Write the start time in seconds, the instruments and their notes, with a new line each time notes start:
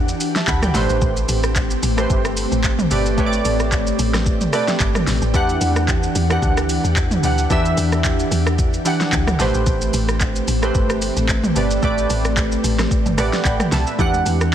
Already playing: log drum bass E2, ambient pad E3 D4 G4 F#5, synth keys E3 D4 F#4 G4 F#5, downlifter
0.08 shaker
0.20 open hi-hat, shaker
0.35 synth keys E5 A5, snare, shaker
0.47 log drum bass D2, synth keys F#5 B5, kick, clap, shaker
0.62 synth keys D5 G5, cross-stick, mid tom, shaker
0.74 log drum bass A1, synth keys A3 G4 B4 C5, ambient pad A3 C4, snare, open hi-hat, shaker
0.89 log drum bass A1, shaker
1.02 log drum bass A1, kick, shaker
1.17 shaker
1.29 log drum bass A1, open hi-hat, shaker
1.43 cross-stick, shaker
1.56 kick, clap, shaker
1.71 shaker
1.83 log drum bass A1, open hi-hat, shaker
1.97 synth keys A3 G4 B4 C5, cross-stick, shaker
2.10 log drum bass G1, kick, shaker
2.25 cross-stick, shaker
2.37 open hi-hat, shaker
2.52 log drum bass A1, shaker
2.64 kick, clap, shaker
2.79 mid tom, shaker
2.90 log drum bass G1, synth keys A3 G4 B4 D5, open hi-hat, shaker
3.06 shaker
3.18 log drum bass A1, synth keys A3 G4 B4 C#5, kick, shaker
3.26 synth keys D5
3.33 shaker
3.45 log drum bass A1, open hi-hat, shaker
3.60 cross-stick, shaker
3.72 kick, clap, shaker
3.87 shaker
3.99 log drum bass A1, open hi-hat, shaker
4.14 cross-stick, snare, shaker
4.26 kick, shaker
4.41 mid tom, shaker
4.53 synth keys A3 G4 B4 D5, cross-stick, open hi-hat, shaker
4.68 snare, shaker
4.80 log drum bass G1, kick, clap, shaker
4.95 cross-stick, mid tom, shaker
5.07 log drum bass A1, snare, open hi-hat, shaker
5.22 log drum bass A1, shaker
5.34 log drum bass E2, synth keys E3 D4 G4 F#5, ambient pad E3 D4 F#5, kick, shaker
5.49 shaker
5.61 log drum bass E2, open hi-hat, shaker
5.76 cross-stick, shaker
5.88 kick, clap, shaker
6.03 shaker
6.15 log drum bass E2, open hi-hat, shaker
6.30 synth keys E3 D4 G4 F#5, cross-stick, shaker
6.42 log drum bass D2, kick, shaker
6.57 cross-stick, shaker
6.69 open hi-hat, shaker
6.84 log drum bass E2, shaker
6.96 kick, clap, shaker
7.11 mid tom, shaker
7.23 log drum bass D2, synth keys E3 D4 G4 F#5, open hi-hat, shaker
7.38 shaker
7.50 log drum bass E2, synth keys E3 D4 G4 E5, kick, shaker
7.65 shaker
7.77 log drum bass E2, open hi-hat, shaker
7.92 cross-stick, shaker
8.04 kick, clap, shaker
8.19 shaker
8.31 log drum bass E2, open hi-hat, shaker
8.47 cross-stick, shaker
8.59 kick, shaker
8.73 shaker
8.85 synth keys E3 D4 G4 F#5, open hi-hat, shaker
9.00 snare, shaker
9.12 log drum bass D2, kick, clap, shaker
9.27 cross-stick, mid tom, shaker
9.39 log drum bass A1, synth keys A3 G4 B4 C5, ambient pad A3 C4, snare, open hi-hat, shaker
9.54 log drum bass A1, shaker
9.66 log drum bass A1, kick, shaker
9.81 shaker
9.94 log drum bass A1, open hi-hat, shaker
10.08 cross-stick, shaker
10.21 kick, clap, shaker
10.36 shaker
10.48 log drum bass A1, open hi-hat, shaker
10.62 synth keys A3 G4 B4 C5, cross-stick, shaker
10.75 log drum bass G1, kick, shaker
10.90 cross-stick, shaker
11.02 open hi-hat, shaker
11.17 log drum bass A1, shaker
11.29 kick, clap, shaker
11.44 mid tom, shaker
11.55 log drum bass G1, synth keys A3 G4 B4 D5, open hi-hat, shaker
11.71 shaker
11.82 log drum bass A1, synth keys A3 G4 B4 D5, kick, shaker
11.98 shaker
12.10 log drum bass A1, open hi-hat, shaker
12.25 cross-stick, shaker
12.37 kick, clap, shaker
12.52 shaker
12.64 log drum bass A1, open hi-hat, shaker
12.79 cross-stick, snare, shaker
12.91 kick, shaker
13.06 log drum bass G1, mid tom, shaker
13.18 log drum bass A1, synth keys A3 G4 B4 D5 F#5, cross-stick, open hi-hat, shaker
13.33 snare, shaker
13.45 log drum bass A1, synth keys F#5 G5 B5, kick, clap, shaker
13.60 cross-stick, mid tom, shaker
13.72 log drum bass C2, synth keys E5 A5, snare, open hi-hat, shaker
13.87 synth keys B4 E5, shaker
13.99 log drum bass E2, synth keys E3 D4 G4 F#5, kick, shaker
14.14 high conga, shaker
14.26 log drum bass E2, open hi-hat, shaker
14.41 cross-stick, shaker